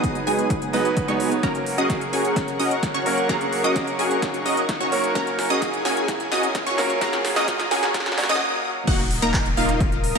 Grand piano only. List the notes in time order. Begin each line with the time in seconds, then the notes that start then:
Already playing: F#3 B3 D#4 F#4 G#4
0.73 F#3 B3 D#4 B4
1.08 F#3 B3 D#4 C#5
1.43 F#3 A#3 C#4 A#4
1.77 F#3 A#3 C#4 G#4
3.05 F#3 A#3 C#4 A#4
3.29 F#3 A#3 C#4 G#4
3.63 F#3 A#3 C#4 A#4
4.91 F#3 A#3 C#4 A#4
5.15 F#3 A#3 C#4 A#4
5.49 F#3 A#3 C#4 G#4
6.78 F#3 A#3 C#4 A#4
7.01 F#3 A#3 C#4 G#4
7.35 F#3 A#3 C#4 A#4
8.17 F#3 A#3 C#4 C#5